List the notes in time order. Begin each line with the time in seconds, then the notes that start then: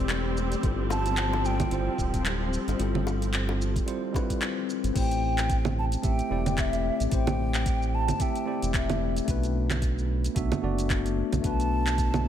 Already playing: E1 G3 A3 C4 E4 G4 B4 D5
0.09 clap, closed hi-hat, shaker
0.37 shaker
0.52 closed hi-hat, shaker
0.61 G1 F3 G3 C4 E4 F4, kick, closed hi-hat, shaker
0.65 A4
0.90 A5, high bongo, shaker
1.06 closed hi-hat, shaker
1.17 clap, closed hi-hat, shaker
1.33 high bongo
1.45 G5, shaker
1.60 kick, closed hi-hat, low conga, shaker
1.69 G1 G3 C4 E4 F4, closed hi-hat, shaker
1.74 C5
1.98 D1, kick, shaker
2.14 kick, closed hi-hat, shaker
2.26 clap, closed hi-hat, shaker
2.53 shaker
2.67 G1, closed hi-hat, high bongo, shaker
2.77 G1 G3 C4 E4 F4, closed hi-hat, shaker
2.82 A4
2.95 low conga
3.07 high bongo, shaker
3.22 closed hi-hat, shaker
3.34 clap, closed hi-hat, shaker
3.49 high bongo
3.62 shaker
3.76 kick, closed hi-hat, shaker
3.86 G3 C4 E4 F4 C5, closed hi-hat, shaker
4.13 G3 C4 E4 F4 B4, kick, high bongo, shaker
4.30 kick, closed hi-hat, shaker
4.42 clap, closed hi-hat, shaker
4.70 shaker
4.84 G1, closed hi-hat, shaker
4.93 A1 A3 C4 E4 G4, kick, closed hi-hat, crash, shaker
4.97 C5 G5
5.11 closed hi-hat, shaker
5.38 clap, closed hi-hat, shaker
5.50 kick, closed hi-hat, shaker
5.65 low conga, shaker
5.79 A5
5.92 closed hi-hat, shaker
6.02 A1 A3 C4 E4 G4 E5 G5, kick, closed hi-hat, shaker
6.19 closed hi-hat, shaker
6.30 E1 A3 C4 E4 G4 D5
6.46 closed hi-hat, low conga, shaker
6.58 E5, kick, clap, closed hi-hat, shaker
6.73 closed hi-hat, shaker
7.00 A1, closed hi-hat, shaker
7.09 A1 A3 C4 E4 G4, kick, closed hi-hat, shaker
7.14 C5 G5
7.27 closed hi-hat, low conga, shaker
7.54 clap, closed hi-hat, shaker
7.66 kick, closed hi-hat, shaker
7.82 shaker
7.95 A5
8.08 closed hi-hat, low conga, shaker
8.19 A3 C4 E4 G4 E5 G5, kick, closed hi-hat, shaker
8.35 closed hi-hat, shaker
8.46 A3 C4 E4 G4 D5
8.62 E1, closed hi-hat, shaker
8.74 E5, kick, clap, closed hi-hat, shaker
8.90 closed hi-hat, low conga, shaker
9.16 closed hi-hat, shaker
9.25 B1 A3 B3 D4 F#4, kick, closed hi-hat, shaker
9.30 B4
9.43 closed hi-hat, shaker
9.71 clap, closed hi-hat, low conga, shaker
9.82 kick, closed hi-hat, shaker
9.98 shaker
10.24 closed hi-hat, shaker
10.35 B1 A3 B3 D4 F#4 E5, kick, closed hi-hat, shaker
10.52 closed hi-hat, low conga, shaker
10.62 F#1 A3 B3 D4 F#4 D5
10.78 closed hi-hat, shaker
10.90 kick, clap, closed hi-hat, shaker
11.06 closed hi-hat, shaker
11.33 B1, closed hi-hat, low conga, shaker
11.41 B1 A3 B3 D4 F#4, kick, closed hi-hat, shaker
11.46 B4 A5
11.60 closed hi-hat, shaker
11.87 clap, closed hi-hat, shaker
11.98 kick, closed hi-hat, shaker
12.14 low conga, shaker